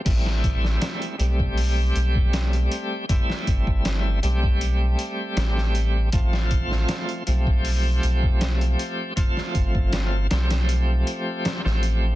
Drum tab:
CC |x---------------|----------------|----------------|----------------|
HH |x-x-xxx-o-x-xxx-|x-x-x-x-x-x-x-x-|x-x-xxx-o-x-xxx-|x-x-x-xxx-x-x-x-|
SD |-o-oo-------o---|-o--o-------oo--|-o-oo-------o---|-o--o-oo----oo--|
BD |o-o----o---o----|o-oo---o--------|o-o----o---o----|o-oo------------|